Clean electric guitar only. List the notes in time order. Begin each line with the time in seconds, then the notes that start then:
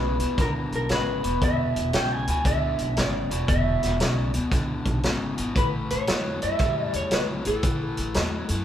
Already playing: B4
0.41 A#4
0.76 A#4
0.92 B4
1.44 E5
1.95 G5
2.12 G#5
2.30 G#5
2.46 E5
2.98 D5
3.49 E5
4.09 D5
5.57 B4
5.91 C#5
6.43 E5
6.85 D5
6.96 C#5
7.13 B4
7.47 A4